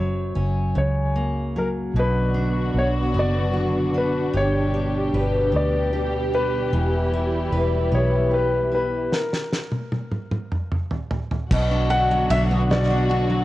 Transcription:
Already playing: F#1 F#2 F#3 C#4 C#5
0.35 F#1 C#4
0.75 C#2 C#3 C#5
1.16 A#3
1.56 F#3 A#4
1.94 B1 B2 D3 F#3 B3 D4 F#4
1.99 B4
2.34 D4
2.74 B1
2.78 C#5
3.14 F#1 B3
3.19 D5
3.53 F#4
3.94 D4 B4
4.33 G1 B2 D3 G3 G4 C#5
4.74 D4
5.13 G1 B4
5.52 D2 B3
5.56 D5
5.93 G4
6.34 D4 B4
6.73 E1 E3 G3 E4
7.13 E4
7.52 E1 B4
7.92 B1 B3 C#5
8.31 G4 B4
8.71 E4 B4
9.12 A#4, snare
9.33 snare
9.52 snare
9.72 high tom
9.92 high tom
10.11 mid tom
10.31 mid tom
10.52 mid tom
10.71 mid tom
10.91 floor tom
11.11 floor tom
11.31 floor tom
11.51 B1 B2 D3 F#3 D4 F#4, kick, crash
11.71 D4
11.90 F#4 F#5, ride
12.11 F#3
12.30 B1 D4 E5, ride
12.51 B3
12.71 B2 D5, snare, ride
12.90 D4
13.10 F#4, ride
13.30 F#3

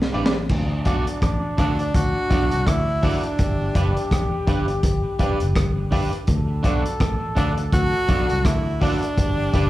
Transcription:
Already playing: B1
0.02 snare
0.13 A1 D4 G4 B4 D5
0.26 snare
0.49 D2 D4, kick, crash
0.85 B1 D4 F#4 A4 D5, kick, closed hi-hat
1.07 closed hi-hat
1.22 A1, kick, cross-stick, closed hi-hat
1.57 D2 D4 F#4 A4 D5, kick, cross-stick, closed hi-hat
1.79 A4 D5, muted clean electric guitar stroke, closed hi-hat
1.94 D2 F#4, kick, closed hi-hat
2.30 B1 D4 F#4 A4 D5, kick, closed hi-hat
2.51 C2, muted clean electric guitar stroke, closed hi-hat
2.67 D2 E4, kick, cross-stick, closed hi-hat
3.02 D4 F#4 A4 D5, kick, open hi-hat
3.18 E4
3.23 D4, closed hi-hat
3.39 G1 G4, kick, closed hi-hat
3.75 F#1 D4 G4 B4 D5, kick, closed hi-hat
3.97 closed hi-hat
4.11 E1, kick, cross-stick, closed hi-hat
4.47 G1 D4 G4 B4 D5, kick, closed hi-hat
4.68 B4 D5, muted clean electric guitar stroke, closed hi-hat
4.83 G1, kick, closed hi-hat
5.19 E1 D4 G4 B4 D5, kick, closed hi-hat
5.40 F#1, closed hi-hat
5.55 G1, kick, cross-stick, closed hi-hat
5.91 D4 G4 B4 D5, kick, open hi-hat
6.13 closed hi-hat
6.27 D2 A4, kick, closed hi-hat
6.63 B1 D4 F#4 A4 D5, kick, closed hi-hat
6.86 closed hi-hat
7.00 A1, kick, cross-stick, closed hi-hat
7.35 D2 D4 F#4 A4 D5, kick, cross-stick, closed hi-hat
7.57 A4 D5, muted clean electric guitar stroke, closed hi-hat
7.72 D2 F#4, kick, closed hi-hat
8.08 B1 D4 F#4 A4 D5, kick, closed hi-hat
8.30 C2, muted clean electric guitar stroke, closed hi-hat
8.45 D2 E4, kick, cross-stick, closed hi-hat
8.80 D4 F#4 A4 D5, kick, open hi-hat
9.03 closed hi-hat
9.17 G1 G4, kick, closed hi-hat
9.53 F#1 D4 G4 B4 D5, kick, closed hi-hat

